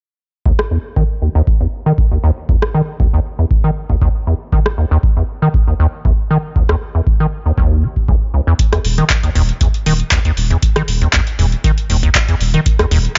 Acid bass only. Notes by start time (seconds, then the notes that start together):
0.46 D#2
0.71 E2
0.96 D#3
1.22 D#2
1.35 D#2
1.61 E2
1.86 D#3
2.11 D#2
2.24 D#2
2.49 E2
2.74 D#3
3.00 D#2
3.13 D#2
3.39 E2
3.64 D#3
3.90 D#2
4.02 D#2
4.27 E2
4.53 D#3
4.78 D#2
4.91 D#2
5.17 E2
5.42 D#3
5.67 D#2
5.80 D#2
6.05 E2
6.30 D#3
6.56 D#2
6.69 D#2
6.95 E2
7.20 D#3
7.46 D#2
7.58 D#2
7.83 F#3
8.08 C#2
8.34 C#2
8.47 E2
8.72 E2
8.98 D#3
9.23 D#2
9.35 D#2
9.61 E2
9.86 D#3
10.12 D#2
10.25 D#2
10.50 E2
10.76 D#3
11.01 D#2
11.13 D#2
11.39 E2
11.64 D#3
11.90 D#2
12.03 D#2
12.28 E2
12.54 D#3
12.79 D#2
12.91 D#2